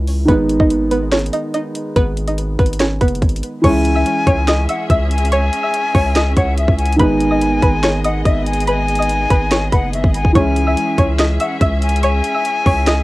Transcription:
Already playing: 808-style bass C#2, grand piano E3 G#3 C#4 E4, synth pluck C#4 C#5
0.07 open hi-hat
0.25 808-style bass G#1, grand piano D#3 G#3, synth pluck B3 B4, kick, closed hi-hat
0.29 grand piano B3 D#4
0.49 closed hi-hat
0.60 808-style bass G#1, synth pluck D#4 D#5, kick
0.70 closed hi-hat
0.91 synth pluck B3 B4, closed hi-hat
1.12 synth pluck C#4 C#5, snare, closed hi-hat
1.19 closed hi-hat
1.26 closed hi-hat
1.33 synth pluck D#4 D#5, closed hi-hat
1.54 synth pluck D#4 D#5, closed hi-hat
1.75 closed hi-hat
1.96 808-style bass G#1, synth pluck B3 B4, kick, closed hi-hat
2.17 closed hi-hat
2.27 synth pluck D#4 D#5, closed hi-hat
2.38 closed hi-hat
2.59 808-style bass G#1, synth pluck B3 B4, kick, closed hi-hat
2.66 closed hi-hat
2.73 closed hi-hat
2.80 synth pluck C#4 C#5, snare, closed hi-hat
3.01 808-style bass F#1, synth pluck B3 B4, kick, closed hi-hat
3.08 closed hi-hat
3.15 closed hi-hat
3.22 808-style bass G#1, kick, closed hi-hat
3.29 closed hi-hat
3.36 closed hi-hat
3.43 closed hi-hat
3.61 808-style bass C#2, grand piano E3 G#3, string section C#4 G#4 E5, synth pluck C#5 C#6, flute G#5, kick, closed hi-hat, crash
3.65 grand piano C#4 E4
3.85 closed hi-hat
3.95 synth pluck E5 E6
4.06 closed hi-hat
4.27 808-style bass C#2, synth pluck C#5 C#6, kick, closed hi-hat
4.48 synth pluck D#5 D#6, snare, closed hi-hat
4.69 synth pluck E5 E6, flute F#5, closed hi-hat
4.90 808-style bass C#2, flute E5, synth pluck E5 E6, kick, closed hi-hat
5.11 flute G#5, closed hi-hat
5.18 closed hi-hat
5.25 closed hi-hat
5.32 synth pluck C#5 C#6, flute G#5, closed hi-hat
5.53 closed hi-hat
5.63 synth pluck E5 E6
5.74 closed hi-hat
5.95 808-style bass C#2, synth pluck C#5 C#6, kick, open hi-hat
6.16 synth pluck D#5 D#6, snare, closed hi-hat
6.37 808-style bass C#2, synth pluck C#5 C#6, flute F#5, kick, closed hi-hat
6.58 flute E5, closed hi-hat
6.68 808-style bass C#2, kick
6.79 flute G#5, closed hi-hat
6.86 closed hi-hat
6.93 grand piano D#3, closed hi-hat
6.98 808-style bass G#1, grand piano G#3 B3, string section B3 G#4 D#5, synth pluck B4 B5, flute G#5, kick, closed hi-hat
7.03 grand piano D#4
7.21 closed hi-hat
7.31 synth pluck D#5 D#6
7.42 closed hi-hat
7.62 808-style bass G#1, synth pluck B4 B5, kick, closed hi-hat
7.83 synth pluck C#5 C#6, snare, closed hi-hat
8.04 synth pluck D#5 D#6, flute F#5, closed hi-hat
8.25 808-style bass G#1, synth pluck D#5 D#6, flute E5, kick, closed hi-hat
8.46 flute G#5, closed hi-hat
8.53 closed hi-hat
8.60 closed hi-hat
8.67 synth pluck B4 B5, flute G#5, closed hi-hat
8.88 closed hi-hat
8.95 synth pluck D#6, closed hi-hat
9.00 synth pluck D#5, closed hi-hat
9.09 closed hi-hat
9.30 808-style bass G#1, synth pluck B4 B5, kick, closed hi-hat
9.51 synth pluck C#5 C#6, snare, closed hi-hat
9.72 808-style bass F#1, synth pluck B4 B5, flute F#5, kick, closed hi-hat
9.93 flute E5, closed hi-hat
10.04 808-style bass G#1, kick
10.14 flute G#5, closed hi-hat
10.25 808-style bass G#1, kick
10.33 808-style bass C#2, grand piano E3 G#3, string section C#4 E5, synth pluck C#5 C#6, flute G#5, kick, closed hi-hat
10.37 grand piano C#4 E4
10.56 closed hi-hat
10.67 synth pluck E5 E6
10.77 closed hi-hat
10.98 808-style bass C#2, synth pluck C#5 C#6, kick, closed hi-hat
11.19 synth pluck D#5 D#6, snare, closed hi-hat
11.40 synth pluck E5 E6, flute F#5, closed hi-hat
11.61 808-style bass C#2, flute E5, synth pluck E5 E6, kick, closed hi-hat
11.82 flute G#5, closed hi-hat
11.89 closed hi-hat
11.96 closed hi-hat
12.03 synth pluck C#5 C#6, flute G#5, closed hi-hat
12.24 closed hi-hat
12.34 synth pluck E5 E6
12.45 closed hi-hat
12.66 808-style bass C#2, synth pluck C#5 C#6, kick, open hi-hat
12.87 synth pluck D#5 D#6, snare, closed hi-hat

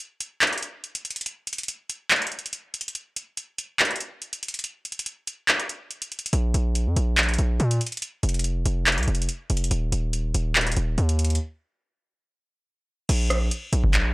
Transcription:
0.20 closed hi-hat
0.41 clap, closed hi-hat
0.47 closed hi-hat
0.53 closed hi-hat
0.58 closed hi-hat
0.62 closed hi-hat
0.84 closed hi-hat
0.95 closed hi-hat
1.05 closed hi-hat
1.10 closed hi-hat
1.16 closed hi-hat
1.21 closed hi-hat
1.26 closed hi-hat
1.47 closed hi-hat
1.53 closed hi-hat
1.58 closed hi-hat
1.63 closed hi-hat
1.68 closed hi-hat
1.89 closed hi-hat
2.10 clap, closed hi-hat
2.16 closed hi-hat
2.22 closed hi-hat
2.27 closed hi-hat
2.32 closed hi-hat
2.39 closed hi-hat
2.46 closed hi-hat
2.53 closed hi-hat
2.74 closed hi-hat, open hi-hat
2.81 closed hi-hat
2.88 closed hi-hat
2.95 closed hi-hat
3.16 closed hi-hat
3.37 closed hi-hat
3.58 closed hi-hat
3.79 clap, closed hi-hat
3.85 closed hi-hat
3.91 closed hi-hat
3.96 closed hi-hat
4.00 closed hi-hat
4.22 closed hi-hat
4.33 closed hi-hat
4.43 closed hi-hat
4.48 closed hi-hat
4.54 closed hi-hat
4.59 closed hi-hat
4.64 closed hi-hat
4.85 closed hi-hat
4.92 closed hi-hat
4.99 closed hi-hat
5.06 closed hi-hat
5.27 closed hi-hat
5.48 clap, closed hi-hat
5.60 closed hi-hat
5.69 closed hi-hat
5.91 closed hi-hat
6.02 closed hi-hat
6.12 closed hi-hat
6.19 closed hi-hat
6.26 closed hi-hat
6.33 808-style bass A#1, closed hi-hat
6.54 808-style bass A#1, closed hi-hat
6.75 closed hi-hat
6.86 808-style bass F2
6.96 808-style bass A#1, closed hi-hat
7.18 clap, closed hi-hat
7.23 closed hi-hat
7.29 closed hi-hat
7.34 closed hi-hat
7.39 808-style bass A#1, closed hi-hat
7.60 808-style bass A#2, closed hi-hat
7.71 closed hi-hat
7.81 closed hi-hat
7.87 closed hi-hat
7.92 closed hi-hat
7.97 closed hi-hat
8.02 closed hi-hat
8.23 808-style bass F1, closed hi-hat
8.29 closed hi-hat
8.34 closed hi-hat
8.39 closed hi-hat
8.44 closed hi-hat
8.65 808-style bass F1, closed hi-hat
8.87 clap, closed hi-hat
8.92 closed hi-hat
8.98 808-style bass C2, closed hi-hat
9.03 closed hi-hat
9.08 808-style bass F1, closed hi-hat
9.15 closed hi-hat
9.22 closed hi-hat
9.29 closed hi-hat
9.50 808-style bass F1, closed hi-hat, open hi-hat
9.57 closed hi-hat
9.64 closed hi-hat
9.71 808-style bass D#1, closed hi-hat
9.92 808-style bass D#1, closed hi-hat
10.13 closed hi-hat
10.34 808-style bass D#1, closed hi-hat
10.55 clap, closed hi-hat
10.61 closed hi-hat
10.67 closed hi-hat
10.72 closed hi-hat
10.77 808-style bass D#1, closed hi-hat
10.98 808-style bass D#2, closed hi-hat
11.09 closed hi-hat
11.19 closed hi-hat
11.24 closed hi-hat
11.30 closed hi-hat
11.35 closed hi-hat
13.09 808-style bass A#1, closed hi-hat, crash
13.30 cross-stick, closed hi-hat
13.51 closed hi-hat
13.73 808-style bass A#1, closed hi-hat
13.84 kick
13.93 clap, closed hi-hat

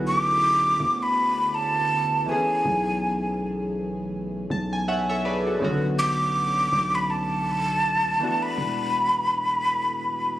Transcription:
Already playing: 808-style bass B1, synth keys D3 A3 B3 C#4 E4 F#4 G#4
0.07 flute D6
0.80 808-style bass D2
1.03 flute B5
1.55 flute A5
2.26 synth keys E3 A3 B3 C4, flute G#5
2.31 synth keys G#4
2.36 synth keys C#4
2.65 808-style bass B1
4.50 808-style bass B1, synth keys A5
4.73 synth keys G#5
4.88 synth keys C#5 E5 F#5
5.09 synth keys A4 C#5 E5
5.25 synth keys G#4 B4 D5
5.47 synth keys F#4 A4
5.59 808-style bass B1, synth keys C#3 A3 B3 C#4
5.64 synth keys D3 F#4
5.99 flute D6
6.73 808-style bass B1
6.95 flute B5
7.10 flute A5
8.19 synth keys E3 A3 B3 D4
8.24 synth keys F#4
8.43 flute B5
8.58 808-style bass E1

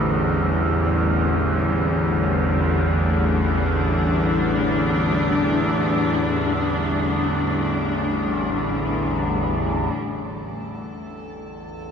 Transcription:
Already playing: synth drone A1 E2, cello section A2 D3 G3 C4
2.36 cello section D4
9.93 synth drone A1 E2, ambient pad A4

